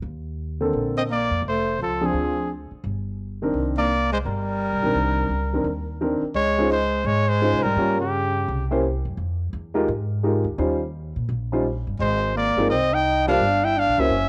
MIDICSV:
0, 0, Header, 1, 6, 480
1, 0, Start_track
1, 0, Key_signature, -3, "minor"
1, 0, Tempo, 351700
1, 998, Time_signature, 4, 2, 24, 8
1, 19500, End_track
2, 0, Start_track
2, 0, Title_t, "Trumpet"
2, 0, Program_c, 0, 56
2, 1335, Note_on_c, 0, 75, 76
2, 1407, Note_off_c, 0, 75, 0
2, 1531, Note_on_c, 0, 74, 85
2, 1952, Note_off_c, 0, 74, 0
2, 2021, Note_on_c, 0, 72, 80
2, 2438, Note_off_c, 0, 72, 0
2, 2496, Note_on_c, 0, 69, 68
2, 2815, Note_on_c, 0, 68, 64
2, 2835, Note_off_c, 0, 69, 0
2, 3433, Note_off_c, 0, 68, 0
2, 5165, Note_on_c, 0, 74, 93
2, 5601, Note_off_c, 0, 74, 0
2, 5643, Note_on_c, 0, 72, 78
2, 5717, Note_off_c, 0, 72, 0
2, 5829, Note_on_c, 0, 70, 77
2, 8159, Note_off_c, 0, 70, 0
2, 8675, Note_on_c, 0, 73, 94
2, 9123, Note_off_c, 0, 73, 0
2, 9177, Note_on_c, 0, 72, 90
2, 9647, Note_on_c, 0, 73, 95
2, 9668, Note_off_c, 0, 72, 0
2, 9945, Note_on_c, 0, 72, 93
2, 9966, Note_off_c, 0, 73, 0
2, 10410, Note_on_c, 0, 70, 85
2, 10430, Note_off_c, 0, 72, 0
2, 10897, Note_off_c, 0, 70, 0
2, 10931, Note_on_c, 0, 67, 75
2, 11822, Note_off_c, 0, 67, 0
2, 16396, Note_on_c, 0, 72, 86
2, 16826, Note_off_c, 0, 72, 0
2, 16891, Note_on_c, 0, 74, 87
2, 17313, Note_off_c, 0, 74, 0
2, 17341, Note_on_c, 0, 75, 90
2, 17667, Note_on_c, 0, 79, 102
2, 17688, Note_off_c, 0, 75, 0
2, 18126, Note_off_c, 0, 79, 0
2, 18137, Note_on_c, 0, 77, 92
2, 18625, Note_on_c, 0, 79, 86
2, 18645, Note_off_c, 0, 77, 0
2, 18823, Note_on_c, 0, 77, 94
2, 18844, Note_off_c, 0, 79, 0
2, 19104, Note_on_c, 0, 76, 91
2, 19124, Note_off_c, 0, 77, 0
2, 19500, Note_off_c, 0, 76, 0
2, 19500, End_track
3, 0, Start_track
3, 0, Title_t, "Grand piano"
3, 0, Program_c, 1, 0
3, 826, Note_on_c, 1, 50, 59
3, 828, Note_on_c, 1, 60, 54
3, 833, Note_on_c, 1, 58, 56
3, 842, Note_on_c, 1, 69, 66
3, 1444, Note_off_c, 1, 50, 0
3, 1445, Note_off_c, 1, 60, 0
3, 1448, Note_off_c, 1, 58, 0
3, 1452, Note_off_c, 1, 69, 0
3, 2741, Note_on_c, 1, 53, 60
3, 2745, Note_on_c, 1, 60, 54
3, 2746, Note_on_c, 1, 62, 52
3, 2751, Note_on_c, 1, 68, 64
3, 3361, Note_off_c, 1, 53, 0
3, 3363, Note_off_c, 1, 60, 0
3, 3364, Note_off_c, 1, 62, 0
3, 3366, Note_off_c, 1, 68, 0
3, 4666, Note_on_c, 1, 51, 64
3, 4674, Note_on_c, 1, 60, 56
3, 4684, Note_on_c, 1, 62, 59
3, 4685, Note_on_c, 1, 70, 66
3, 5284, Note_off_c, 1, 51, 0
3, 5288, Note_off_c, 1, 60, 0
3, 5293, Note_off_c, 1, 62, 0
3, 5294, Note_off_c, 1, 70, 0
3, 6585, Note_on_c, 1, 51, 51
3, 6598, Note_on_c, 1, 62, 48
3, 6601, Note_on_c, 1, 60, 48
3, 6602, Note_on_c, 1, 70, 58
3, 7204, Note_off_c, 1, 51, 0
3, 7210, Note_off_c, 1, 62, 0
3, 7212, Note_off_c, 1, 60, 0
3, 7212, Note_off_c, 1, 70, 0
3, 7551, Note_on_c, 1, 51, 57
3, 7559, Note_on_c, 1, 60, 53
3, 7560, Note_on_c, 1, 62, 51
3, 7570, Note_on_c, 1, 70, 62
3, 7704, Note_off_c, 1, 51, 0
3, 7709, Note_off_c, 1, 60, 0
3, 7709, Note_off_c, 1, 62, 0
3, 7714, Note_off_c, 1, 70, 0
3, 8200, Note_on_c, 1, 51, 61
3, 8206, Note_on_c, 1, 60, 57
3, 8211, Note_on_c, 1, 62, 58
3, 8211, Note_on_c, 1, 70, 67
3, 8473, Note_off_c, 1, 51, 0
3, 8476, Note_off_c, 1, 60, 0
3, 8479, Note_off_c, 1, 62, 0
3, 8479, Note_off_c, 1, 70, 0
3, 8982, Note_on_c, 1, 56, 66
3, 8991, Note_on_c, 1, 65, 61
3, 8992, Note_on_c, 1, 61, 62
3, 8999, Note_on_c, 1, 63, 61
3, 9002, Note_on_c, 1, 72, 76
3, 9140, Note_off_c, 1, 56, 0
3, 9145, Note_off_c, 1, 61, 0
3, 9145, Note_off_c, 1, 65, 0
3, 9148, Note_off_c, 1, 63, 0
3, 9150, Note_off_c, 1, 72, 0
3, 10118, Note_on_c, 1, 61, 54
3, 10119, Note_on_c, 1, 56, 61
3, 10123, Note_on_c, 1, 63, 59
3, 10125, Note_on_c, 1, 65, 56
3, 10129, Note_on_c, 1, 72, 65
3, 10392, Note_off_c, 1, 61, 0
3, 10393, Note_off_c, 1, 56, 0
3, 10395, Note_off_c, 1, 63, 0
3, 10396, Note_off_c, 1, 65, 0
3, 10398, Note_off_c, 1, 72, 0
3, 10618, Note_on_c, 1, 61, 55
3, 10619, Note_on_c, 1, 58, 65
3, 10624, Note_on_c, 1, 65, 58
3, 10626, Note_on_c, 1, 73, 70
3, 10627, Note_on_c, 1, 67, 58
3, 10882, Note_off_c, 1, 61, 0
3, 10883, Note_off_c, 1, 58, 0
3, 10886, Note_off_c, 1, 65, 0
3, 10886, Note_off_c, 1, 73, 0
3, 10887, Note_off_c, 1, 67, 0
3, 11884, Note_on_c, 1, 58, 67
3, 11887, Note_on_c, 1, 64, 62
3, 11893, Note_on_c, 1, 61, 63
3, 11895, Note_on_c, 1, 67, 64
3, 11898, Note_on_c, 1, 72, 76
3, 12031, Note_off_c, 1, 58, 0
3, 12033, Note_off_c, 1, 64, 0
3, 12035, Note_off_c, 1, 61, 0
3, 12036, Note_off_c, 1, 67, 0
3, 12038, Note_off_c, 1, 72, 0
3, 13295, Note_on_c, 1, 56, 68
3, 13301, Note_on_c, 1, 63, 65
3, 13307, Note_on_c, 1, 65, 67
3, 13307, Note_on_c, 1, 67, 67
3, 13307, Note_on_c, 1, 70, 76
3, 13457, Note_off_c, 1, 56, 0
3, 13460, Note_off_c, 1, 63, 0
3, 13462, Note_off_c, 1, 67, 0
3, 13463, Note_off_c, 1, 65, 0
3, 13463, Note_off_c, 1, 70, 0
3, 13964, Note_on_c, 1, 56, 59
3, 13975, Note_on_c, 1, 63, 58
3, 13976, Note_on_c, 1, 65, 55
3, 13977, Note_on_c, 1, 67, 55
3, 13986, Note_on_c, 1, 70, 64
3, 14236, Note_off_c, 1, 56, 0
3, 14241, Note_off_c, 1, 63, 0
3, 14242, Note_off_c, 1, 65, 0
3, 14242, Note_off_c, 1, 67, 0
3, 14247, Note_off_c, 1, 70, 0
3, 14440, Note_on_c, 1, 55, 61
3, 14442, Note_on_c, 1, 61, 54
3, 14446, Note_on_c, 1, 63, 55
3, 14453, Note_on_c, 1, 72, 68
3, 14459, Note_on_c, 1, 65, 53
3, 14714, Note_off_c, 1, 55, 0
3, 14715, Note_off_c, 1, 61, 0
3, 14717, Note_off_c, 1, 63, 0
3, 14720, Note_off_c, 1, 72, 0
3, 14723, Note_off_c, 1, 65, 0
3, 15725, Note_on_c, 1, 55, 62
3, 15726, Note_on_c, 1, 61, 62
3, 15732, Note_on_c, 1, 63, 58
3, 15738, Note_on_c, 1, 65, 60
3, 15740, Note_on_c, 1, 72, 69
3, 15872, Note_off_c, 1, 55, 0
3, 15872, Note_off_c, 1, 61, 0
3, 15875, Note_off_c, 1, 63, 0
3, 15878, Note_off_c, 1, 65, 0
3, 15879, Note_off_c, 1, 72, 0
3, 17155, Note_on_c, 1, 56, 68
3, 17161, Note_on_c, 1, 60, 62
3, 17170, Note_on_c, 1, 63, 64
3, 17177, Note_on_c, 1, 65, 63
3, 17178, Note_on_c, 1, 70, 77
3, 17307, Note_off_c, 1, 56, 0
3, 17310, Note_off_c, 1, 60, 0
3, 17314, Note_off_c, 1, 63, 0
3, 17318, Note_off_c, 1, 65, 0
3, 17318, Note_off_c, 1, 70, 0
3, 18109, Note_on_c, 1, 55, 76
3, 18116, Note_on_c, 1, 58, 68
3, 18116, Note_on_c, 1, 65, 67
3, 18117, Note_on_c, 1, 62, 71
3, 18127, Note_on_c, 1, 72, 81
3, 18264, Note_off_c, 1, 55, 0
3, 18268, Note_off_c, 1, 58, 0
3, 18268, Note_off_c, 1, 62, 0
3, 18268, Note_off_c, 1, 65, 0
3, 18273, Note_off_c, 1, 72, 0
3, 19090, Note_on_c, 1, 58, 72
3, 19092, Note_on_c, 1, 64, 64
3, 19093, Note_on_c, 1, 66, 64
3, 19096, Note_on_c, 1, 61, 67
3, 19100, Note_on_c, 1, 72, 75
3, 19235, Note_off_c, 1, 58, 0
3, 19236, Note_off_c, 1, 64, 0
3, 19236, Note_off_c, 1, 66, 0
3, 19238, Note_off_c, 1, 61, 0
3, 19240, Note_off_c, 1, 72, 0
3, 19500, End_track
4, 0, Start_track
4, 0, Title_t, "Tenor saxophone"
4, 0, Program_c, 2, 66
4, 1330, Note_on_c, 2, 60, 67
4, 1403, Note_off_c, 2, 60, 0
4, 1511, Note_on_c, 2, 58, 67
4, 1941, Note_off_c, 2, 58, 0
4, 2014, Note_on_c, 2, 57, 69
4, 2434, Note_off_c, 2, 57, 0
4, 2476, Note_on_c, 2, 53, 59
4, 2811, Note_off_c, 2, 53, 0
4, 2811, Note_on_c, 2, 53, 66
4, 3431, Note_off_c, 2, 53, 0
4, 5152, Note_on_c, 2, 58, 74
4, 5594, Note_off_c, 2, 58, 0
4, 5624, Note_on_c, 2, 56, 70
4, 5702, Note_off_c, 2, 56, 0
4, 5800, Note_on_c, 2, 55, 69
4, 8145, Note_off_c, 2, 55, 0
4, 8670, Note_on_c, 2, 56, 85
4, 9120, Note_off_c, 2, 56, 0
4, 9141, Note_on_c, 2, 56, 77
4, 9609, Note_off_c, 2, 56, 0
4, 9609, Note_on_c, 2, 56, 78
4, 9923, Note_off_c, 2, 56, 0
4, 9923, Note_on_c, 2, 56, 80
4, 10417, Note_on_c, 2, 55, 82
4, 10437, Note_off_c, 2, 56, 0
4, 10897, Note_off_c, 2, 55, 0
4, 10905, Note_on_c, 2, 49, 65
4, 11810, Note_off_c, 2, 49, 0
4, 16372, Note_on_c, 2, 56, 74
4, 16812, Note_off_c, 2, 56, 0
4, 16861, Note_on_c, 2, 58, 72
4, 17297, Note_off_c, 2, 58, 0
4, 17347, Note_on_c, 2, 60, 76
4, 17646, Note_on_c, 2, 63, 84
4, 17666, Note_off_c, 2, 60, 0
4, 18115, Note_off_c, 2, 63, 0
4, 18122, Note_on_c, 2, 62, 86
4, 18619, Note_on_c, 2, 64, 76
4, 18639, Note_off_c, 2, 62, 0
4, 18792, Note_on_c, 2, 62, 75
4, 18812, Note_off_c, 2, 64, 0
4, 19095, Note_on_c, 2, 61, 83
4, 19116, Note_off_c, 2, 62, 0
4, 19500, Note_off_c, 2, 61, 0
4, 19500, End_track
5, 0, Start_track
5, 0, Title_t, "Upright bass"
5, 0, Program_c, 3, 32
5, 31, Note_on_c, 3, 39, 74
5, 946, Note_off_c, 3, 39, 0
5, 999, Note_on_c, 3, 34, 66
5, 1728, Note_off_c, 3, 34, 0
5, 1782, Note_on_c, 3, 41, 62
5, 1931, Note_off_c, 3, 41, 0
5, 1939, Note_on_c, 3, 29, 73
5, 2394, Note_off_c, 3, 29, 0
5, 2442, Note_on_c, 3, 37, 63
5, 2886, Note_off_c, 3, 37, 0
5, 2909, Note_on_c, 3, 38, 70
5, 3643, Note_off_c, 3, 38, 0
5, 3871, Note_on_c, 3, 31, 73
5, 4786, Note_off_c, 3, 31, 0
5, 4826, Note_on_c, 3, 36, 67
5, 5743, Note_off_c, 3, 36, 0
5, 5806, Note_on_c, 3, 31, 78
5, 6397, Note_off_c, 3, 31, 0
5, 6440, Note_on_c, 3, 36, 54
5, 6588, Note_off_c, 3, 36, 0
5, 6596, Note_on_c, 3, 34, 61
5, 6746, Note_off_c, 3, 34, 0
5, 6754, Note_on_c, 3, 36, 70
5, 7202, Note_off_c, 3, 36, 0
5, 7224, Note_on_c, 3, 37, 70
5, 7677, Note_off_c, 3, 37, 0
5, 7698, Note_on_c, 3, 39, 72
5, 8438, Note_off_c, 3, 39, 0
5, 8660, Note_on_c, 3, 37, 71
5, 9581, Note_off_c, 3, 37, 0
5, 9616, Note_on_c, 3, 44, 82
5, 10221, Note_off_c, 3, 44, 0
5, 10434, Note_on_c, 3, 44, 66
5, 10582, Note_off_c, 3, 44, 0
5, 10590, Note_on_c, 3, 43, 76
5, 11506, Note_off_c, 3, 43, 0
5, 11577, Note_on_c, 3, 36, 81
5, 12298, Note_off_c, 3, 36, 0
5, 12352, Note_on_c, 3, 42, 69
5, 12511, Note_off_c, 3, 42, 0
5, 12518, Note_on_c, 3, 41, 73
5, 12965, Note_off_c, 3, 41, 0
5, 13004, Note_on_c, 3, 40, 79
5, 13448, Note_off_c, 3, 40, 0
5, 13488, Note_on_c, 3, 44, 85
5, 14214, Note_off_c, 3, 44, 0
5, 14252, Note_on_c, 3, 38, 68
5, 14420, Note_off_c, 3, 38, 0
5, 14443, Note_on_c, 3, 39, 81
5, 15171, Note_off_c, 3, 39, 0
5, 15231, Note_on_c, 3, 46, 68
5, 15391, Note_off_c, 3, 46, 0
5, 15405, Note_on_c, 3, 34, 80
5, 16132, Note_off_c, 3, 34, 0
5, 16201, Note_on_c, 3, 31, 64
5, 16356, Note_off_c, 3, 31, 0
5, 16369, Note_on_c, 3, 32, 77
5, 17094, Note_off_c, 3, 32, 0
5, 17154, Note_on_c, 3, 31, 64
5, 17312, Note_off_c, 3, 31, 0
5, 17335, Note_on_c, 3, 36, 81
5, 18240, Note_off_c, 3, 36, 0
5, 18287, Note_on_c, 3, 31, 78
5, 18879, Note_off_c, 3, 31, 0
5, 18926, Note_on_c, 3, 34, 62
5, 19072, Note_off_c, 3, 34, 0
5, 19080, Note_on_c, 3, 37, 70
5, 19224, Note_off_c, 3, 37, 0
5, 19233, Note_on_c, 3, 30, 80
5, 19500, Note_off_c, 3, 30, 0
5, 19500, End_track
6, 0, Start_track
6, 0, Title_t, "Muted upright bass strokes"
6, 3699, Note_on_c, 9, 29, 35
6, 3835, Note_off_c, 9, 29, 0
6, 8481, Note_on_c, 9, 29, 32
6, 8617, Note_off_c, 9, 29, 0
6, 19500, End_track
0, 0, End_of_file